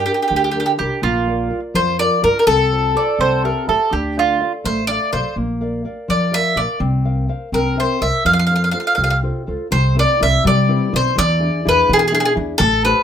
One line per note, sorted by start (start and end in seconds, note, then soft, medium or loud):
0.06 0.46 D4 soft
0.06 0.11 G4 soft
0.06 0.46 G4 soft
0.06 0.46 A#4 soft
0.14 0.19 G4 soft
0.22 0.27 G4 soft
0.28 0.62 D2 medium
0.28 0.78 D3 medium
0.28 0.34 G4 soft
0.36 0.42 G4 soft
0.44 0.50 G4 soft
0.51 0.76 D4 soft
0.51 0.57 G4 soft
0.51 0.77 G4 soft
0.51 0.77 A#4 soft
0.60 0.65 G4 soft
0.66 0.71 G4 soft
0.77 0.88 C2 medium
0.77 0.97 D4 soft
0.77 0.97 G4 soft
0.77 1.03 G4 medium
0.77 0.98 A#4 soft
1.02 1.50 A#1 medium
1.02 1.49 A#3 medium
1.02 1.59 F4 medium
1.27 1.49 F4 soft
1.27 1.49 A#4 soft
1.27 1.50 D5 soft
1.50 1.89 F4 soft
1.50 1.89 A#4 soft
1.50 1.90 D5 soft
1.74 2.06 F2 medium
1.74 2.22 F3 medium
1.74 1.98 C5 medium
1.99 2.20 F4 soft
1.99 2.21 A#4 soft
1.99 2.22 D5 medium
1.99 2.22 D5 soft
2.22 2.31 G2 medium
2.22 2.41 F4 soft
2.22 2.42 A#4 soft
2.22 2.38 A#4 medium
2.22 2.42 D5 soft
2.39 2.47 A#4 soft
2.46 2.94 C2 medium
2.46 2.94 C4 medium
2.46 3.65 A4 medium
2.71 2.93 F4 soft
2.71 2.94 A4 soft
2.71 2.94 C5 soft
2.94 3.14 F4 soft
2.94 3.14 A4 soft
2.94 3.15 C5 soft
2.94 3.20 D5 medium
3.19 3.51 C2 medium
3.19 3.67 C4 medium
3.19 3.44 C5 medium
3.44 3.66 G4 soft
3.44 3.68 A#4 soft
3.44 3.66 C5 soft
3.44 3.67 E5 soft
3.67 3.76 A1 medium
3.67 3.87 G4 soft
3.67 3.93 A4 medium
3.67 3.87 C5 soft
3.67 3.87 E5 soft
3.91 4.40 D2 medium
3.91 4.39 D4 soft
3.91 4.16 G4 medium
4.17 4.52 F4 medium
4.17 4.38 A4 soft
4.17 4.39 D5 soft
4.17 4.40 F5 soft
4.40 4.79 A4 soft
4.40 4.80 D5 soft
4.40 4.80 F5 soft
4.64 4.97 A1 medium
4.64 5.12 A3 medium
4.64 4.87 C5 medium
4.87 5.12 A4 soft
4.87 5.11 D5 medium
4.87 5.12 D5 soft
4.87 5.13 F5 soft
5.13 5.21 B1 medium
5.13 5.32 A4 soft
5.13 5.35 C5 medium
5.13 5.32 D5 soft
5.13 5.33 F5 soft
5.36 5.83 A#1 medium
5.36 5.84 A#3 medium
5.61 5.84 A#4 soft
5.61 5.83 D5 soft
5.61 5.84 F5 soft
5.85 6.24 A#4 soft
5.85 6.23 D5 soft
5.85 6.24 F5 soft
6.08 6.40 F2 medium
6.08 6.55 F3 medium
6.08 6.35 D5 medium
6.32 6.55 A#4 soft
6.32 6.55 D5 soft
6.32 6.58 E5 medium
6.32 6.56 F5 soft
6.56 6.64 A#1 medium
6.56 6.75 A#4 soft
6.56 6.79 D5 soft
6.56 6.76 F5 soft
6.80 7.27 C2 medium
6.80 7.27 C4 medium
7.05 7.27 A#4 soft
7.05 7.28 C5 soft
7.05 7.28 F5 soft
7.29 7.48 A#4 soft
7.29 7.48 C5 soft
7.29 7.48 F5 soft
7.52 7.84 C2 medium
7.52 8.00 C4 medium
7.52 7.77 A#4 medium
7.76 7.99 A#4 soft
7.76 8.00 C5 soft
7.76 8.03 C5 medium
7.76 8.00 E5 soft
8.00 8.09 C2 medium
8.00 8.20 A#4 soft
8.00 8.20 C5 soft
8.00 8.20 E5 soft
8.00 8.24 E5 medium
8.25 8.72 F2 medium
8.25 8.72 F3 medium
8.25 8.32 F5 medium
8.33 8.38 F5 medium
8.39 8.45 F5 medium
8.47 8.72 F4 soft
8.47 8.54 F5 soft
8.51 8.72 A4 soft
8.51 8.73 C5 soft
8.56 8.62 F5 soft
8.64 8.70 F5 soft
8.71 9.13 F4 soft
8.71 9.13 A4 soft
8.71 9.13 C5 soft
8.71 8.78 F5 medium
8.80 8.86 F5 soft
8.87 8.93 F5 soft
8.95 9.30 C2 medium
8.95 9.46 C3 medium
8.95 9.01 F5 soft
9.04 9.09 F5 soft
9.10 9.16 F5 soft
9.23 9.46 F4 soft
9.23 9.46 A4 soft
9.23 9.47 C5 soft
9.47 9.56 C#2 soft
9.47 9.66 F4 soft
9.47 9.66 A4 soft
9.47 9.67 C5 soft
9.71 10.04 C2 medium
9.71 10.18 C3 medium
9.71 9.95 C5 medium
9.95 10.18 C4 soft
9.95 10.19 E4 soft
9.95 10.19 B4 soft
9.99 10.20 D5 medium
10.19 10.37 C2 medium
10.19 10.58 C4 soft
10.19 10.59 E4 soft
10.19 10.59 B4 soft
10.19 10.44 E5 medium
10.44 10.76 C3 medium
10.44 10.91 G3 medium
10.44 10.95 D5 medium
10.68 10.91 C4 medium
10.68 10.91 E4 soft
10.68 10.91 B4 soft
10.92 11.09 B1 medium
10.92 11.11 C4 soft
10.92 11.11 E4 soft
10.92 11.11 B4 soft
10.92 11.16 C5 medium
11.15 11.49 E2 loud
11.15 11.63 E3 medium
11.15 11.67 D5 medium
11.39 11.63 D4 soft
11.39 11.64 E4 soft
11.39 11.64 G#4 soft
11.64 11.81 E2 medium
11.64 12.03 D4 soft
11.64 12.04 E4 soft
11.64 12.04 G#4 medium
11.69 11.91 B4 medium
11.88 12.35 B2 medium
11.88 12.20 E3 medium
11.93 11.98 G#4 medium
11.99 12.05 G#4 soft
12.08 12.34 D4 soft
12.08 12.13 G#4 medium
12.12 12.34 E4 soft
12.12 12.34 G#4 medium
12.12 12.19 G#4 medium
12.20 12.24 G#4 medium
12.25 12.32 G#4 medium
12.35 12.52 E2 medium
12.35 12.55 D4 soft
12.35 12.54 E4 soft
12.35 12.54 G#4 soft
12.58 12.92 A1 loud
12.58 13.03 A3 medium
12.58 12.82 A4 medium
12.85 13.03 G4 soft
12.85 13.03 A4 soft
12.85 13.03 B4 medium
12.85 13.03 C5 medium